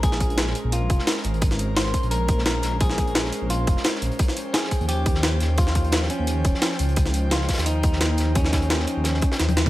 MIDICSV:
0, 0, Header, 1, 5, 480
1, 0, Start_track
1, 0, Tempo, 346821
1, 44, Time_signature, 4, 2, 24, 8
1, 13422, End_track
2, 0, Start_track
2, 0, Title_t, "Clean electric guitar"
2, 0, Program_c, 0, 27
2, 49, Note_on_c, 0, 68, 89
2, 1008, Note_on_c, 0, 65, 74
2, 1035, Note_off_c, 0, 68, 0
2, 1453, Note_off_c, 0, 65, 0
2, 2446, Note_on_c, 0, 72, 101
2, 2891, Note_off_c, 0, 72, 0
2, 2919, Note_on_c, 0, 70, 100
2, 3385, Note_off_c, 0, 70, 0
2, 3402, Note_on_c, 0, 70, 100
2, 3878, Note_off_c, 0, 70, 0
2, 3884, Note_on_c, 0, 68, 95
2, 4840, Note_off_c, 0, 68, 0
2, 4846, Note_on_c, 0, 65, 76
2, 5291, Note_off_c, 0, 65, 0
2, 6286, Note_on_c, 0, 68, 100
2, 6758, Note_off_c, 0, 68, 0
2, 6763, Note_on_c, 0, 67, 100
2, 7433, Note_off_c, 0, 67, 0
2, 7725, Note_on_c, 0, 65, 99
2, 8394, Note_off_c, 0, 65, 0
2, 8446, Note_on_c, 0, 61, 86
2, 9349, Note_off_c, 0, 61, 0
2, 10128, Note_on_c, 0, 65, 108
2, 10600, Note_on_c, 0, 63, 101
2, 10620, Note_off_c, 0, 65, 0
2, 11564, Note_off_c, 0, 63, 0
2, 11569, Note_on_c, 0, 61, 84
2, 12951, Note_off_c, 0, 61, 0
2, 13422, End_track
3, 0, Start_track
3, 0, Title_t, "Analog synth pad"
3, 0, Program_c, 1, 89
3, 0, Note_on_c, 1, 56, 79
3, 0, Note_on_c, 1, 61, 75
3, 0, Note_on_c, 1, 70, 90
3, 0, Note_on_c, 1, 72, 72
3, 5752, Note_off_c, 1, 56, 0
3, 5754, Note_off_c, 1, 70, 0
3, 5805, Note_on_c, 1, 79, 88
3, 5809, Note_on_c, 1, 53, 82
3, 9592, Note_off_c, 1, 61, 0
3, 9645, Note_on_c, 1, 63, 74
3, 13422, Note_off_c, 1, 53, 0
3, 13422, Note_off_c, 1, 63, 0
3, 13422, Note_off_c, 1, 72, 0
3, 13422, Note_off_c, 1, 79, 0
3, 13422, End_track
4, 0, Start_track
4, 0, Title_t, "Detuned saw bass"
4, 0, Program_c, 2, 39
4, 0, Note_on_c, 2, 34, 79
4, 744, Note_off_c, 2, 34, 0
4, 886, Note_on_c, 2, 34, 98
4, 1223, Note_off_c, 2, 34, 0
4, 1244, Note_on_c, 2, 29, 93
4, 1358, Note_off_c, 2, 29, 0
4, 1721, Note_on_c, 2, 32, 92
4, 2664, Note_off_c, 2, 32, 0
4, 2807, Note_on_c, 2, 34, 97
4, 3624, Note_off_c, 2, 34, 0
4, 3641, Note_on_c, 2, 34, 83
4, 4584, Note_off_c, 2, 34, 0
4, 4729, Note_on_c, 2, 34, 96
4, 5065, Note_off_c, 2, 34, 0
4, 5085, Note_on_c, 2, 29, 95
4, 5198, Note_off_c, 2, 29, 0
4, 5562, Note_on_c, 2, 34, 97
4, 5677, Note_off_c, 2, 34, 0
4, 6650, Note_on_c, 2, 39, 99
4, 7466, Note_off_c, 2, 39, 0
4, 7483, Note_on_c, 2, 39, 80
4, 8425, Note_off_c, 2, 39, 0
4, 8570, Note_on_c, 2, 39, 94
4, 8905, Note_off_c, 2, 39, 0
4, 8923, Note_on_c, 2, 27, 89
4, 9038, Note_off_c, 2, 27, 0
4, 9403, Note_on_c, 2, 37, 98
4, 10345, Note_off_c, 2, 37, 0
4, 10489, Note_on_c, 2, 39, 103
4, 11305, Note_off_c, 2, 39, 0
4, 11322, Note_on_c, 2, 39, 79
4, 12265, Note_off_c, 2, 39, 0
4, 12410, Note_on_c, 2, 39, 98
4, 12746, Note_off_c, 2, 39, 0
4, 13004, Note_on_c, 2, 39, 87
4, 13422, Note_off_c, 2, 39, 0
4, 13422, End_track
5, 0, Start_track
5, 0, Title_t, "Drums"
5, 41, Note_on_c, 9, 42, 83
5, 43, Note_off_c, 9, 42, 0
5, 43, Note_on_c, 9, 42, 87
5, 44, Note_on_c, 9, 36, 115
5, 157, Note_on_c, 9, 38, 39
5, 170, Note_off_c, 9, 38, 0
5, 170, Note_on_c, 9, 38, 37
5, 181, Note_off_c, 9, 42, 0
5, 182, Note_off_c, 9, 36, 0
5, 282, Note_on_c, 9, 42, 65
5, 284, Note_on_c, 9, 36, 62
5, 287, Note_off_c, 9, 42, 0
5, 287, Note_on_c, 9, 42, 65
5, 308, Note_off_c, 9, 38, 0
5, 416, Note_off_c, 9, 42, 0
5, 416, Note_on_c, 9, 42, 43
5, 422, Note_off_c, 9, 36, 0
5, 521, Note_off_c, 9, 42, 0
5, 521, Note_on_c, 9, 38, 114
5, 521, Note_on_c, 9, 42, 90
5, 530, Note_off_c, 9, 38, 0
5, 530, Note_on_c, 9, 38, 116
5, 651, Note_off_c, 9, 38, 0
5, 651, Note_on_c, 9, 38, 55
5, 659, Note_off_c, 9, 42, 0
5, 763, Note_on_c, 9, 42, 60
5, 767, Note_off_c, 9, 42, 0
5, 767, Note_on_c, 9, 42, 64
5, 790, Note_off_c, 9, 38, 0
5, 905, Note_off_c, 9, 42, 0
5, 1001, Note_on_c, 9, 42, 86
5, 1004, Note_off_c, 9, 42, 0
5, 1004, Note_on_c, 9, 42, 76
5, 1143, Note_off_c, 9, 42, 0
5, 1242, Note_on_c, 9, 42, 61
5, 1245, Note_on_c, 9, 36, 102
5, 1251, Note_off_c, 9, 42, 0
5, 1251, Note_on_c, 9, 42, 58
5, 1369, Note_on_c, 9, 38, 49
5, 1383, Note_off_c, 9, 36, 0
5, 1390, Note_off_c, 9, 42, 0
5, 1484, Note_off_c, 9, 38, 0
5, 1484, Note_on_c, 9, 38, 123
5, 1484, Note_on_c, 9, 42, 89
5, 1488, Note_off_c, 9, 42, 0
5, 1488, Note_on_c, 9, 42, 90
5, 1492, Note_off_c, 9, 38, 0
5, 1492, Note_on_c, 9, 38, 116
5, 1618, Note_off_c, 9, 38, 0
5, 1618, Note_on_c, 9, 38, 45
5, 1626, Note_off_c, 9, 42, 0
5, 1712, Note_on_c, 9, 42, 57
5, 1724, Note_off_c, 9, 42, 0
5, 1724, Note_on_c, 9, 42, 60
5, 1757, Note_off_c, 9, 38, 0
5, 1853, Note_off_c, 9, 42, 0
5, 1853, Note_on_c, 9, 42, 39
5, 1958, Note_off_c, 9, 42, 0
5, 1958, Note_on_c, 9, 42, 90
5, 1964, Note_off_c, 9, 42, 0
5, 1964, Note_on_c, 9, 36, 111
5, 1964, Note_on_c, 9, 42, 81
5, 2084, Note_off_c, 9, 42, 0
5, 2084, Note_on_c, 9, 42, 39
5, 2091, Note_on_c, 9, 38, 37
5, 2102, Note_off_c, 9, 36, 0
5, 2202, Note_off_c, 9, 42, 0
5, 2202, Note_on_c, 9, 42, 61
5, 2203, Note_off_c, 9, 42, 0
5, 2203, Note_on_c, 9, 42, 62
5, 2229, Note_off_c, 9, 38, 0
5, 2341, Note_off_c, 9, 42, 0
5, 2443, Note_on_c, 9, 38, 119
5, 2443, Note_on_c, 9, 42, 86
5, 2445, Note_off_c, 9, 38, 0
5, 2445, Note_on_c, 9, 38, 103
5, 2447, Note_off_c, 9, 42, 0
5, 2447, Note_on_c, 9, 42, 78
5, 2570, Note_off_c, 9, 38, 0
5, 2570, Note_on_c, 9, 38, 46
5, 2585, Note_off_c, 9, 42, 0
5, 2682, Note_on_c, 9, 42, 60
5, 2683, Note_on_c, 9, 36, 58
5, 2692, Note_off_c, 9, 42, 0
5, 2692, Note_on_c, 9, 42, 63
5, 2708, Note_off_c, 9, 38, 0
5, 2810, Note_off_c, 9, 42, 0
5, 2810, Note_on_c, 9, 42, 39
5, 2822, Note_off_c, 9, 36, 0
5, 2922, Note_off_c, 9, 42, 0
5, 2922, Note_on_c, 9, 42, 84
5, 2930, Note_off_c, 9, 42, 0
5, 2930, Note_on_c, 9, 42, 86
5, 3068, Note_off_c, 9, 42, 0
5, 3160, Note_on_c, 9, 42, 62
5, 3162, Note_off_c, 9, 42, 0
5, 3162, Note_on_c, 9, 42, 59
5, 3164, Note_on_c, 9, 36, 107
5, 3300, Note_off_c, 9, 42, 0
5, 3300, Note_on_c, 9, 38, 46
5, 3302, Note_off_c, 9, 36, 0
5, 3398, Note_on_c, 9, 42, 89
5, 3401, Note_off_c, 9, 38, 0
5, 3401, Note_off_c, 9, 42, 0
5, 3401, Note_on_c, 9, 38, 122
5, 3401, Note_on_c, 9, 42, 88
5, 3412, Note_off_c, 9, 38, 0
5, 3412, Note_on_c, 9, 38, 104
5, 3539, Note_off_c, 9, 42, 0
5, 3550, Note_off_c, 9, 38, 0
5, 3635, Note_on_c, 9, 38, 50
5, 3635, Note_on_c, 9, 42, 67
5, 3642, Note_off_c, 9, 42, 0
5, 3642, Note_on_c, 9, 42, 61
5, 3773, Note_off_c, 9, 38, 0
5, 3780, Note_off_c, 9, 42, 0
5, 3882, Note_on_c, 9, 42, 80
5, 3884, Note_on_c, 9, 36, 115
5, 3890, Note_off_c, 9, 42, 0
5, 3890, Note_on_c, 9, 42, 79
5, 4007, Note_on_c, 9, 38, 38
5, 4022, Note_off_c, 9, 36, 0
5, 4028, Note_off_c, 9, 42, 0
5, 4029, Note_off_c, 9, 38, 0
5, 4029, Note_on_c, 9, 38, 39
5, 4123, Note_on_c, 9, 42, 58
5, 4124, Note_on_c, 9, 36, 64
5, 4128, Note_off_c, 9, 42, 0
5, 4128, Note_on_c, 9, 42, 58
5, 4167, Note_off_c, 9, 38, 0
5, 4253, Note_off_c, 9, 42, 0
5, 4253, Note_on_c, 9, 42, 42
5, 4262, Note_off_c, 9, 36, 0
5, 4359, Note_off_c, 9, 42, 0
5, 4359, Note_on_c, 9, 38, 120
5, 4359, Note_on_c, 9, 42, 86
5, 4363, Note_off_c, 9, 38, 0
5, 4363, Note_off_c, 9, 42, 0
5, 4363, Note_on_c, 9, 38, 118
5, 4363, Note_on_c, 9, 42, 85
5, 4496, Note_off_c, 9, 38, 0
5, 4496, Note_on_c, 9, 38, 52
5, 4501, Note_off_c, 9, 42, 0
5, 4602, Note_on_c, 9, 42, 58
5, 4610, Note_off_c, 9, 42, 0
5, 4610, Note_on_c, 9, 42, 59
5, 4634, Note_off_c, 9, 38, 0
5, 4749, Note_off_c, 9, 42, 0
5, 4843, Note_on_c, 9, 42, 83
5, 4849, Note_off_c, 9, 42, 0
5, 4849, Note_on_c, 9, 42, 88
5, 4988, Note_off_c, 9, 42, 0
5, 5080, Note_on_c, 9, 42, 60
5, 5084, Note_off_c, 9, 42, 0
5, 5084, Note_on_c, 9, 42, 59
5, 5085, Note_on_c, 9, 36, 101
5, 5218, Note_on_c, 9, 38, 48
5, 5223, Note_off_c, 9, 36, 0
5, 5223, Note_off_c, 9, 42, 0
5, 5316, Note_on_c, 9, 42, 87
5, 5324, Note_off_c, 9, 38, 0
5, 5324, Note_off_c, 9, 42, 0
5, 5324, Note_on_c, 9, 38, 119
5, 5324, Note_on_c, 9, 42, 83
5, 5335, Note_off_c, 9, 38, 0
5, 5335, Note_on_c, 9, 38, 106
5, 5462, Note_off_c, 9, 42, 0
5, 5465, Note_off_c, 9, 38, 0
5, 5465, Note_on_c, 9, 38, 50
5, 5563, Note_on_c, 9, 42, 60
5, 5565, Note_off_c, 9, 42, 0
5, 5565, Note_on_c, 9, 42, 61
5, 5604, Note_off_c, 9, 38, 0
5, 5695, Note_off_c, 9, 42, 0
5, 5695, Note_on_c, 9, 42, 39
5, 5802, Note_off_c, 9, 42, 0
5, 5802, Note_on_c, 9, 42, 84
5, 5805, Note_on_c, 9, 36, 110
5, 5818, Note_off_c, 9, 42, 0
5, 5818, Note_on_c, 9, 42, 76
5, 5930, Note_on_c, 9, 38, 38
5, 5936, Note_off_c, 9, 42, 0
5, 5936, Note_on_c, 9, 42, 39
5, 5943, Note_off_c, 9, 36, 0
5, 6043, Note_off_c, 9, 42, 0
5, 6043, Note_on_c, 9, 42, 62
5, 6056, Note_off_c, 9, 42, 0
5, 6056, Note_on_c, 9, 42, 61
5, 6068, Note_off_c, 9, 38, 0
5, 6194, Note_off_c, 9, 42, 0
5, 6283, Note_on_c, 9, 38, 117
5, 6283, Note_on_c, 9, 42, 84
5, 6288, Note_off_c, 9, 38, 0
5, 6288, Note_off_c, 9, 42, 0
5, 6288, Note_on_c, 9, 38, 102
5, 6288, Note_on_c, 9, 42, 82
5, 6416, Note_off_c, 9, 38, 0
5, 6416, Note_on_c, 9, 38, 53
5, 6426, Note_off_c, 9, 42, 0
5, 6523, Note_on_c, 9, 42, 58
5, 6524, Note_on_c, 9, 36, 56
5, 6527, Note_off_c, 9, 42, 0
5, 6527, Note_on_c, 9, 42, 67
5, 6554, Note_off_c, 9, 38, 0
5, 6655, Note_off_c, 9, 42, 0
5, 6655, Note_on_c, 9, 42, 38
5, 6662, Note_off_c, 9, 36, 0
5, 6763, Note_off_c, 9, 42, 0
5, 6763, Note_on_c, 9, 42, 84
5, 6768, Note_off_c, 9, 42, 0
5, 6768, Note_on_c, 9, 42, 82
5, 6906, Note_off_c, 9, 42, 0
5, 7001, Note_on_c, 9, 42, 64
5, 7002, Note_off_c, 9, 42, 0
5, 7002, Note_on_c, 9, 42, 60
5, 7003, Note_on_c, 9, 36, 99
5, 7127, Note_on_c, 9, 38, 47
5, 7140, Note_off_c, 9, 42, 0
5, 7142, Note_off_c, 9, 36, 0
5, 7239, Note_on_c, 9, 42, 81
5, 7240, Note_off_c, 9, 38, 0
5, 7240, Note_off_c, 9, 42, 0
5, 7240, Note_on_c, 9, 38, 116
5, 7240, Note_on_c, 9, 42, 86
5, 7241, Note_off_c, 9, 38, 0
5, 7241, Note_on_c, 9, 38, 103
5, 7379, Note_off_c, 9, 38, 0
5, 7379, Note_off_c, 9, 42, 0
5, 7480, Note_on_c, 9, 42, 58
5, 7484, Note_off_c, 9, 42, 0
5, 7484, Note_on_c, 9, 42, 61
5, 7490, Note_on_c, 9, 38, 48
5, 7623, Note_off_c, 9, 42, 0
5, 7629, Note_off_c, 9, 38, 0
5, 7718, Note_on_c, 9, 42, 86
5, 7723, Note_on_c, 9, 36, 113
5, 7731, Note_off_c, 9, 42, 0
5, 7731, Note_on_c, 9, 42, 81
5, 7845, Note_on_c, 9, 38, 35
5, 7855, Note_off_c, 9, 38, 0
5, 7855, Note_on_c, 9, 38, 41
5, 7862, Note_off_c, 9, 36, 0
5, 7869, Note_off_c, 9, 42, 0
5, 7959, Note_on_c, 9, 42, 63
5, 7960, Note_off_c, 9, 42, 0
5, 7960, Note_on_c, 9, 42, 63
5, 7963, Note_on_c, 9, 36, 59
5, 7994, Note_off_c, 9, 38, 0
5, 8087, Note_off_c, 9, 42, 0
5, 8087, Note_on_c, 9, 42, 41
5, 8102, Note_off_c, 9, 36, 0
5, 8194, Note_off_c, 9, 42, 0
5, 8194, Note_on_c, 9, 42, 85
5, 8200, Note_off_c, 9, 42, 0
5, 8200, Note_on_c, 9, 38, 115
5, 8200, Note_on_c, 9, 42, 84
5, 8215, Note_off_c, 9, 38, 0
5, 8215, Note_on_c, 9, 38, 111
5, 8339, Note_off_c, 9, 42, 0
5, 8340, Note_off_c, 9, 38, 0
5, 8340, Note_on_c, 9, 38, 56
5, 8440, Note_on_c, 9, 42, 68
5, 8441, Note_off_c, 9, 42, 0
5, 8441, Note_on_c, 9, 42, 61
5, 8479, Note_off_c, 9, 38, 0
5, 8579, Note_off_c, 9, 42, 0
5, 8680, Note_on_c, 9, 42, 90
5, 8687, Note_off_c, 9, 42, 0
5, 8687, Note_on_c, 9, 42, 86
5, 8825, Note_off_c, 9, 42, 0
5, 8920, Note_on_c, 9, 42, 60
5, 8924, Note_on_c, 9, 36, 96
5, 8927, Note_off_c, 9, 42, 0
5, 8927, Note_on_c, 9, 42, 65
5, 9056, Note_on_c, 9, 38, 49
5, 9062, Note_off_c, 9, 36, 0
5, 9065, Note_off_c, 9, 42, 0
5, 9158, Note_off_c, 9, 38, 0
5, 9158, Note_on_c, 9, 38, 125
5, 9159, Note_on_c, 9, 42, 90
5, 9160, Note_off_c, 9, 38, 0
5, 9160, Note_off_c, 9, 42, 0
5, 9160, Note_on_c, 9, 38, 109
5, 9160, Note_on_c, 9, 42, 90
5, 9292, Note_off_c, 9, 38, 0
5, 9292, Note_on_c, 9, 38, 42
5, 9298, Note_off_c, 9, 42, 0
5, 9399, Note_on_c, 9, 42, 66
5, 9408, Note_off_c, 9, 42, 0
5, 9408, Note_on_c, 9, 42, 69
5, 9430, Note_off_c, 9, 38, 0
5, 9532, Note_off_c, 9, 42, 0
5, 9532, Note_on_c, 9, 42, 42
5, 9638, Note_off_c, 9, 42, 0
5, 9638, Note_on_c, 9, 42, 89
5, 9644, Note_off_c, 9, 42, 0
5, 9644, Note_on_c, 9, 36, 106
5, 9644, Note_on_c, 9, 42, 80
5, 9763, Note_off_c, 9, 42, 0
5, 9763, Note_on_c, 9, 42, 43
5, 9765, Note_on_c, 9, 38, 35
5, 9783, Note_off_c, 9, 36, 0
5, 9879, Note_off_c, 9, 42, 0
5, 9879, Note_on_c, 9, 42, 65
5, 9891, Note_off_c, 9, 42, 0
5, 9891, Note_on_c, 9, 42, 68
5, 9903, Note_off_c, 9, 38, 0
5, 10029, Note_off_c, 9, 42, 0
5, 10121, Note_on_c, 9, 38, 107
5, 10121, Note_on_c, 9, 42, 93
5, 10124, Note_off_c, 9, 42, 0
5, 10124, Note_on_c, 9, 42, 84
5, 10125, Note_off_c, 9, 38, 0
5, 10125, Note_on_c, 9, 38, 120
5, 10253, Note_off_c, 9, 38, 0
5, 10253, Note_on_c, 9, 38, 50
5, 10263, Note_off_c, 9, 42, 0
5, 10361, Note_on_c, 9, 42, 65
5, 10365, Note_on_c, 9, 36, 55
5, 10366, Note_off_c, 9, 38, 0
5, 10366, Note_on_c, 9, 38, 86
5, 10368, Note_off_c, 9, 42, 0
5, 10368, Note_on_c, 9, 42, 59
5, 10427, Note_off_c, 9, 42, 0
5, 10427, Note_on_c, 9, 42, 60
5, 10432, Note_off_c, 9, 38, 0
5, 10432, Note_on_c, 9, 38, 87
5, 10486, Note_off_c, 9, 42, 0
5, 10486, Note_on_c, 9, 42, 80
5, 10494, Note_off_c, 9, 38, 0
5, 10494, Note_on_c, 9, 38, 107
5, 10503, Note_off_c, 9, 36, 0
5, 10601, Note_off_c, 9, 42, 0
5, 10601, Note_on_c, 9, 42, 89
5, 10609, Note_off_c, 9, 42, 0
5, 10609, Note_on_c, 9, 42, 83
5, 10633, Note_off_c, 9, 38, 0
5, 10748, Note_off_c, 9, 42, 0
5, 10842, Note_on_c, 9, 42, 64
5, 10845, Note_on_c, 9, 36, 100
5, 10851, Note_off_c, 9, 42, 0
5, 10851, Note_on_c, 9, 42, 69
5, 10968, Note_on_c, 9, 38, 47
5, 10983, Note_off_c, 9, 36, 0
5, 10990, Note_off_c, 9, 42, 0
5, 11082, Note_off_c, 9, 38, 0
5, 11082, Note_on_c, 9, 38, 109
5, 11082, Note_on_c, 9, 42, 96
5, 11086, Note_off_c, 9, 42, 0
5, 11086, Note_on_c, 9, 42, 83
5, 11089, Note_off_c, 9, 38, 0
5, 11089, Note_on_c, 9, 38, 106
5, 11224, Note_off_c, 9, 42, 0
5, 11227, Note_off_c, 9, 38, 0
5, 11316, Note_on_c, 9, 42, 67
5, 11322, Note_off_c, 9, 42, 0
5, 11322, Note_on_c, 9, 42, 67
5, 11339, Note_on_c, 9, 38, 49
5, 11460, Note_off_c, 9, 42, 0
5, 11478, Note_off_c, 9, 38, 0
5, 11562, Note_on_c, 9, 42, 96
5, 11564, Note_on_c, 9, 36, 115
5, 11569, Note_off_c, 9, 42, 0
5, 11569, Note_on_c, 9, 42, 84
5, 11690, Note_on_c, 9, 38, 36
5, 11693, Note_off_c, 9, 38, 0
5, 11693, Note_on_c, 9, 38, 43
5, 11703, Note_off_c, 9, 36, 0
5, 11708, Note_off_c, 9, 42, 0
5, 11800, Note_off_c, 9, 38, 0
5, 11800, Note_on_c, 9, 38, 85
5, 11803, Note_on_c, 9, 42, 66
5, 11804, Note_off_c, 9, 42, 0
5, 11804, Note_on_c, 9, 36, 58
5, 11804, Note_on_c, 9, 42, 74
5, 11930, Note_off_c, 9, 42, 0
5, 11930, Note_on_c, 9, 42, 45
5, 11938, Note_off_c, 9, 38, 0
5, 11943, Note_off_c, 9, 36, 0
5, 12043, Note_off_c, 9, 42, 0
5, 12043, Note_on_c, 9, 38, 113
5, 12043, Note_on_c, 9, 42, 93
5, 12045, Note_off_c, 9, 38, 0
5, 12045, Note_on_c, 9, 38, 123
5, 12049, Note_off_c, 9, 42, 0
5, 12049, Note_on_c, 9, 42, 83
5, 12170, Note_off_c, 9, 38, 0
5, 12170, Note_on_c, 9, 38, 57
5, 12187, Note_off_c, 9, 42, 0
5, 12277, Note_on_c, 9, 42, 63
5, 12284, Note_off_c, 9, 42, 0
5, 12284, Note_on_c, 9, 42, 65
5, 12308, Note_off_c, 9, 38, 0
5, 12422, Note_off_c, 9, 42, 0
5, 12513, Note_on_c, 9, 38, 106
5, 12524, Note_on_c, 9, 42, 74
5, 12649, Note_off_c, 9, 38, 0
5, 12649, Note_on_c, 9, 38, 49
5, 12662, Note_off_c, 9, 42, 0
5, 12752, Note_on_c, 9, 42, 63
5, 12764, Note_off_c, 9, 42, 0
5, 12764, Note_on_c, 9, 42, 68
5, 12765, Note_on_c, 9, 36, 92
5, 12788, Note_off_c, 9, 38, 0
5, 12894, Note_on_c, 9, 38, 103
5, 12902, Note_off_c, 9, 42, 0
5, 12904, Note_off_c, 9, 36, 0
5, 12906, Note_on_c, 9, 42, 73
5, 13003, Note_off_c, 9, 38, 0
5, 13003, Note_off_c, 9, 42, 0
5, 13003, Note_on_c, 9, 38, 60
5, 13003, Note_on_c, 9, 42, 96
5, 13005, Note_off_c, 9, 38, 0
5, 13005, Note_on_c, 9, 38, 48
5, 13129, Note_on_c, 9, 48, 62
5, 13134, Note_off_c, 9, 42, 0
5, 13134, Note_on_c, 9, 42, 58
5, 13144, Note_off_c, 9, 38, 0
5, 13243, Note_off_c, 9, 42, 0
5, 13243, Note_on_c, 9, 38, 82
5, 13243, Note_on_c, 9, 42, 67
5, 13247, Note_off_c, 9, 42, 0
5, 13247, Note_on_c, 9, 42, 64
5, 13268, Note_off_c, 9, 48, 0
5, 13371, Note_on_c, 9, 45, 81
5, 13378, Note_off_c, 9, 42, 0
5, 13378, Note_on_c, 9, 42, 45
5, 13381, Note_off_c, 9, 38, 0
5, 13422, Note_off_c, 9, 42, 0
5, 13422, Note_off_c, 9, 45, 0
5, 13422, End_track
0, 0, End_of_file